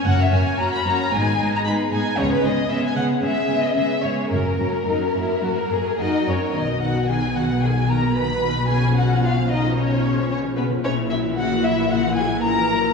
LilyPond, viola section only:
\new Staff \with { instrumentName = "Viola section" } { \clef bass \time 4/4 \key b \major \tempo 4 = 112 << { cis'8 cis'8 cis'8 cis'8 b8 b8 b8 b8 | b8 b8 b8 b8 b8 b8 b8 b8 | ais8 ais8 ais8 ais8 ais8 ais8 ais8 ais8 | b1 |
cis'1 | e'1 | } \\ { ais8 ais8 ais8 ais8 gis8 gis8 gis8 gis8 | gis8 gis8 gis8 gis8 gis8 gis8 gis8 gis8 | fis8 fis8 fis8 fis8 fis8 fis8 fis8 fis8 | dis16 fis16 dis16 fis16 dis16 fis16 dis16 fis16 dis16 fis16 dis16 fis16 dis16 fis16 dis16 fis16 |
cis16 eis16 cis16 eis16 cis16 eis16 cis16 eis16 cis16 eis16 cis16 eis16 cis16 eis16 cis16 eis16 | cis16 e16 fis16 e16 cis16 e16 fis16 e16 cis16 e16 fis16 e16 cis16 e16 fis16 e16 | } >> }